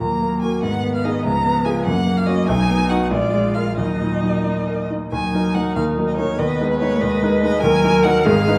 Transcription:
0.00 grand piano D#2, cello F#3, viola A#3, violin A#5
0.22 grand piano A#3
0.41 grand piano F#4 A#4, violin G#5
0.63 grand piano G#2, cello D#3, viola B3, violin F#5
0.83 grand piano B3
0.95 violin F5
1.04 grand piano D#4 G#4, violin D#5
1.25 grand piano C#2, cello F3, violin A#5
1.45 grand piano B3
1.65 grand piano F4 G#4, violin G#5
1.85 grand piano F#2, cello F#3, viola A#3, violin F#5
2.07 grand piano A#3
2.17 violin F5
2.26 grand piano C#4 F#4, violin D#5
2.47 grand piano B1, viola D#4, violin G#5
2.69 grand piano B3
2.90 grand piano D#4 F#4, violin F#5
3.10 grand piano A#1, cello G#3, viola F4, violin D5
3.33 grand piano G#3
3.54 grand piano F4 A#4, violin F5
3.77 grand piano D#2, cello F#3, viola D#4, violin D#5
4.00 grand piano A#2
4.23 grand piano F#3
4.45 grand piano D#4
4.67 grand piano A#4
4.90 grand piano D#4
5.12 grand piano D#2 D#3, cello F#3, viola D#4, violin G#5
5.34 grand piano F#3 D#4 A#4
5.54 grand piano F#3 D#4 A#4, violin F#5
5.76 grand piano D#2 D#3, cello A#3, violin F5
5.98 grand piano F#3 D#4 A#4
6.08 violin D#5
6.17 grand piano F#3 D#4 A#4, violin C#5
6.38 grand piano D#2 D#3, cello B3, viola B4, violin D#5
6.61 grand piano G#3 D#4 B4
6.70 violin B4
6.79 grand piano G#3 D#4 B4, violin C#5
7.00 grand piano D#2 D#3, cello G#3, violin D#5
7.23 grand piano G#3 D#4 B4
7.42 grand piano G#3 D#4 B4, violin D#5
7.61 grand piano D#2 D#3, cello F#3, viola A#4, violin G#5
7.84 grand piano F#3 D#4 A#4
8.04 grand piano F#3 D#4 A#4, violin F#5
8.25 grand piano G#1 G#2, cello D#3, viola G#4, violin F5
8.47 grand piano G#3 D#4 B4

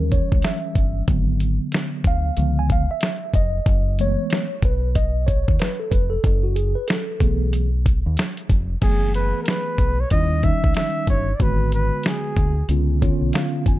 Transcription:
Already playing: fingered electric bass D#2, tine electric piano E3 G3 C#4 A#4
0.12 tine electric piano C#5, kick, closed hi-hat
0.32 fingered electric bass C#2, kick
0.42 tine electric piano E5, snare, closed hi-hat
0.75 fingered electric bass G1, kick, closed hi-hat
1.08 fingered electric bass G#1, tine electric piano D3 F#3 B3, kick, closed hi-hat
1.40 closed hi-hat
1.72 snare, closed hi-hat
2.04 fingered electric bass D2, tine electric piano F5, kick, closed hi-hat
2.37 fingered electric bass C#2, tine electric piano D3 F3 B3, closed hi-hat
2.59 tine electric piano G#5
2.70 tine electric piano F5, kick, closed hi-hat
2.91 tine electric piano E5
3.01 snare, closed hi-hat
3.34 fingered electric bass F1, tine electric piano D#5, kick, closed hi-hat
3.66 fingered electric bass F#1, kick, closed hi-hat
3.99 tine electric piano E3 G#3 A3 B3 C#5, closed hi-hat
4.30 snare, closed hi-hat
4.62 fingered electric bass B1, tine electric piano B4, kick, closed hi-hat
4.95 tine electric piano D#5, kick, closed hi-hat
5.27 tine electric piano C#5, kick, closed hi-hat
5.48 fingered electric bass D#2, kick
5.59 tine electric piano B4, snare, closed hi-hat
5.80 tine electric piano A4
5.91 fingered electric bass F1, tine electric piano B4, kick, closed hi-hat
6.10 tine electric piano A4
6.24 fingered electric bass F#1, kick, closed hi-hat
6.43 tine electric piano F#4
6.56 tine electric piano G#4, closed hi-hat
6.75 tine electric piano B4
6.88 tine electric piano A4, snare, closed hi-hat
7.20 fingered electric bass B1, tine electric piano E3 A3 B3 G#4, kick, closed hi-hat
7.53 closed hi-hat
7.86 kick, closed hi-hat
8.06 fingered electric bass D#2
8.17 snare, closed hi-hat
8.37 closed hi-hat
8.50 fingered electric bass F1, kick, closed hi-hat
8.82 fingered electric bass F#1, tine electric piano E3 G#3 B3 G#4, flugelhorn G#4, kick, closed hi-hat, crash
8.89 tine electric piano A3
9.14 flugelhorn B4, closed hi-hat
9.43 flugelhorn A#4, closed hi-hat
9.48 flugelhorn B4, snare
9.78 fingered electric bass B1, kick, closed hi-hat
10.00 flugelhorn C#5
10.10 fingered electric bass D#2, tine electric piano D#3 G3 C#4 E4, flugelhorn D#5, kick, closed hi-hat
10.42 tine electric piano D#3 G3 C#4 D#4, flugelhorn E5, kick, closed hi-hat
10.64 fingered electric bass C#2, kick
10.74 flugelhorn E5, snare, closed hi-hat
11.07 fingered electric bass G1, flugelhorn C#5, kick, closed hi-hat
11.36 flugelhorn D5
11.40 fingered electric bass G#1, tine electric piano D3 G#3 B3 F#4, flugelhorn B4, kick, closed hi-hat
11.72 flugelhorn B4, closed hi-hat
12.03 flugelhorn G#4, snare, closed hi-hat
12.37 fingered electric bass D2, kick, closed hi-hat
12.68 fingered electric bass C#2, tine electric piano D3 B3 C#4 F4, closed hi-hat
13.01 tine electric piano D3 B3 C#4 F4 C#5, kick, closed hi-hat
13.21 fingered electric bass B1
13.33 tine electric piano F5, snare, closed hi-hat
13.66 fingered electric bass F1, tine electric piano G#5, kick, closed hi-hat

